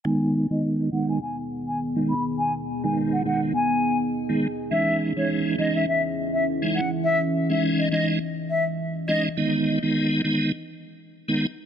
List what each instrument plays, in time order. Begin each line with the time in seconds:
0.05 tonewheel organ D#3 G#3 B3 D#4, ambient pad D#3 B3 G#4 D#5, flute G#5
0.50 tonewheel organ D#3 G#3 B3 D#4, flute D#5
0.92 tonewheel organ D#3 G#3 B3 D#4, flute F#5
1.09 flute G#5
1.22 flute G#5
1.68 flute G#5
1.96 tonewheel organ D#3 G#3 B3 D#4
2.10 flute B5
2.39 flute G#5
2.84 tonewheel organ D#3 G#3 B3 D#4, flute G#5
3.13 flute F#5
3.26 tonewheel organ D#3 G#3 B3 D#4, flute F#5
3.55 flute G#5
4.29 tonewheel organ D#3 G#3 B3 D#4
4.71 tonewheel organ E3 G#3 C#4 D#4, ambient pad E3 C#4, flute E5
5.17 tonewheel organ E3 G#3 C#4 D#4, flute C#5
5.58 tonewheel organ E3 G#3 C#4 D#4, flute D#5
5.76 flute E5
5.88 flute E5
6.33 flute E5
6.62 tonewheel organ E3 G#3 C#4 D#4
6.75 flute F#5
7.04 flute E5
7.50 tonewheel organ E3 G#3 C#4 D#4, flute E5
7.79 flute D#5
7.92 tonewheel organ E3 G#3 C#4 D#4, flute D#5
8.50 flute E5
9.08 tonewheel organ E3 G#3 C#4 D#4, flute D#5
9.37 tonewheel organ D#3 G#3 B3 D#4
9.83 tonewheel organ D#3 G#3 B3 D#4
10.24 tonewheel organ D#3 G#3 B3 D#4
11.28 tonewheel organ D#3 G#3 B3 D#4